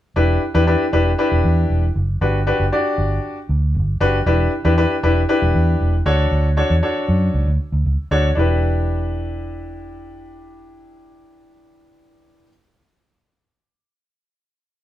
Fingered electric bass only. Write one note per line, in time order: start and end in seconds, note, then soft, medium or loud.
0.16 0.36 E1 loud
0.55 0.74 E2 medium
0.93 1.12 E1 medium
1.32 1.41 E1 medium
1.44 1.64 E2 medium
1.70 1.90 E1 medium
1.96 2.15 F#1 medium
2.21 2.51 G1 loud
2.60 2.69 F#1 medium
2.98 3.18 G1 medium
3.49 3.76 D2 medium
3.75 3.95 G1 medium
4.01 4.20 F#1 loud
4.26 4.46 E1 medium
4.65 4.84 E2 medium
5.03 5.23 E1 medium
5.42 5.52 E1 medium
5.55 5.74 E2 loud
5.80 6.00 E1 medium
6.06 6.25 D2 medium
6.31 6.61 D2 loud
6.70 6.80 E2 medium
7.08 7.28 F#2 medium
7.34 7.44 C#2 medium
7.47 7.57 D2 medium
7.72 7.82 D2 medium
7.85 7.95 C#2 medium
8.11 8.31 D2 medium
8.37 12.45 E1 medium